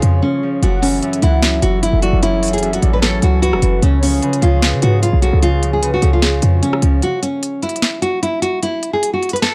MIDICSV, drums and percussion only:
0, 0, Header, 1, 2, 480
1, 0, Start_track
1, 0, Tempo, 400000
1, 750, Time_signature, 4, 2, 24, 8
1, 11453, End_track
2, 0, Start_track
2, 0, Title_t, "Drums"
2, 28, Note_on_c, 9, 42, 80
2, 148, Note_off_c, 9, 42, 0
2, 751, Note_on_c, 9, 42, 78
2, 871, Note_off_c, 9, 42, 0
2, 993, Note_on_c, 9, 46, 82
2, 1113, Note_off_c, 9, 46, 0
2, 1230, Note_on_c, 9, 42, 70
2, 1350, Note_off_c, 9, 42, 0
2, 1358, Note_on_c, 9, 42, 68
2, 1467, Note_off_c, 9, 42, 0
2, 1467, Note_on_c, 9, 42, 77
2, 1587, Note_off_c, 9, 42, 0
2, 1709, Note_on_c, 9, 38, 122
2, 1710, Note_on_c, 9, 42, 79
2, 1829, Note_off_c, 9, 38, 0
2, 1830, Note_off_c, 9, 42, 0
2, 1947, Note_on_c, 9, 42, 89
2, 2067, Note_off_c, 9, 42, 0
2, 2193, Note_on_c, 9, 42, 85
2, 2313, Note_off_c, 9, 42, 0
2, 2428, Note_on_c, 9, 42, 71
2, 2548, Note_off_c, 9, 42, 0
2, 2671, Note_on_c, 9, 42, 83
2, 2791, Note_off_c, 9, 42, 0
2, 2912, Note_on_c, 9, 42, 67
2, 2914, Note_on_c, 9, 46, 84
2, 2975, Note_off_c, 9, 42, 0
2, 2975, Note_on_c, 9, 42, 68
2, 3034, Note_off_c, 9, 46, 0
2, 3039, Note_off_c, 9, 42, 0
2, 3039, Note_on_c, 9, 42, 63
2, 3094, Note_off_c, 9, 42, 0
2, 3094, Note_on_c, 9, 42, 66
2, 3151, Note_off_c, 9, 42, 0
2, 3151, Note_on_c, 9, 42, 72
2, 3271, Note_off_c, 9, 42, 0
2, 3278, Note_on_c, 9, 42, 70
2, 3388, Note_off_c, 9, 42, 0
2, 3388, Note_on_c, 9, 42, 78
2, 3508, Note_off_c, 9, 42, 0
2, 3629, Note_on_c, 9, 38, 121
2, 3629, Note_on_c, 9, 42, 76
2, 3749, Note_off_c, 9, 38, 0
2, 3749, Note_off_c, 9, 42, 0
2, 3867, Note_on_c, 9, 42, 78
2, 3987, Note_off_c, 9, 42, 0
2, 4114, Note_on_c, 9, 42, 82
2, 4234, Note_off_c, 9, 42, 0
2, 4239, Note_on_c, 9, 37, 91
2, 4348, Note_on_c, 9, 42, 82
2, 4359, Note_off_c, 9, 37, 0
2, 4468, Note_off_c, 9, 42, 0
2, 4590, Note_on_c, 9, 42, 80
2, 4710, Note_off_c, 9, 42, 0
2, 4833, Note_on_c, 9, 46, 86
2, 4953, Note_off_c, 9, 46, 0
2, 5071, Note_on_c, 9, 42, 69
2, 5191, Note_off_c, 9, 42, 0
2, 5198, Note_on_c, 9, 42, 69
2, 5308, Note_off_c, 9, 42, 0
2, 5308, Note_on_c, 9, 42, 75
2, 5428, Note_off_c, 9, 42, 0
2, 5550, Note_on_c, 9, 38, 120
2, 5550, Note_on_c, 9, 42, 82
2, 5670, Note_off_c, 9, 38, 0
2, 5670, Note_off_c, 9, 42, 0
2, 5787, Note_on_c, 9, 42, 82
2, 5907, Note_off_c, 9, 42, 0
2, 6034, Note_on_c, 9, 42, 87
2, 6154, Note_off_c, 9, 42, 0
2, 6268, Note_on_c, 9, 42, 74
2, 6388, Note_off_c, 9, 42, 0
2, 6510, Note_on_c, 9, 42, 81
2, 6630, Note_off_c, 9, 42, 0
2, 6753, Note_on_c, 9, 42, 78
2, 6873, Note_off_c, 9, 42, 0
2, 6992, Note_on_c, 9, 42, 86
2, 7112, Note_off_c, 9, 42, 0
2, 7227, Note_on_c, 9, 42, 73
2, 7347, Note_off_c, 9, 42, 0
2, 7469, Note_on_c, 9, 38, 123
2, 7469, Note_on_c, 9, 42, 77
2, 7589, Note_off_c, 9, 38, 0
2, 7589, Note_off_c, 9, 42, 0
2, 7706, Note_on_c, 9, 42, 80
2, 7826, Note_off_c, 9, 42, 0
2, 7953, Note_on_c, 9, 42, 82
2, 8073, Note_off_c, 9, 42, 0
2, 8078, Note_on_c, 9, 37, 91
2, 8188, Note_on_c, 9, 42, 81
2, 8198, Note_off_c, 9, 37, 0
2, 8308, Note_off_c, 9, 42, 0
2, 8430, Note_on_c, 9, 42, 77
2, 8550, Note_off_c, 9, 42, 0
2, 8673, Note_on_c, 9, 42, 84
2, 8793, Note_off_c, 9, 42, 0
2, 8913, Note_on_c, 9, 42, 88
2, 9033, Note_off_c, 9, 42, 0
2, 9150, Note_on_c, 9, 42, 43
2, 9229, Note_off_c, 9, 42, 0
2, 9229, Note_on_c, 9, 42, 59
2, 9310, Note_off_c, 9, 42, 0
2, 9310, Note_on_c, 9, 42, 73
2, 9389, Note_off_c, 9, 42, 0
2, 9389, Note_on_c, 9, 38, 119
2, 9389, Note_on_c, 9, 42, 76
2, 9509, Note_off_c, 9, 38, 0
2, 9509, Note_off_c, 9, 42, 0
2, 9627, Note_on_c, 9, 42, 77
2, 9747, Note_off_c, 9, 42, 0
2, 9874, Note_on_c, 9, 42, 84
2, 9994, Note_off_c, 9, 42, 0
2, 10107, Note_on_c, 9, 42, 77
2, 10227, Note_off_c, 9, 42, 0
2, 10350, Note_on_c, 9, 42, 79
2, 10470, Note_off_c, 9, 42, 0
2, 10593, Note_on_c, 9, 42, 79
2, 10713, Note_off_c, 9, 42, 0
2, 10833, Note_on_c, 9, 42, 88
2, 10953, Note_off_c, 9, 42, 0
2, 11070, Note_on_c, 9, 42, 44
2, 11150, Note_off_c, 9, 42, 0
2, 11150, Note_on_c, 9, 42, 58
2, 11230, Note_off_c, 9, 42, 0
2, 11230, Note_on_c, 9, 42, 73
2, 11309, Note_off_c, 9, 42, 0
2, 11309, Note_on_c, 9, 38, 116
2, 11309, Note_on_c, 9, 42, 77
2, 11429, Note_off_c, 9, 38, 0
2, 11429, Note_off_c, 9, 42, 0
2, 11453, End_track
0, 0, End_of_file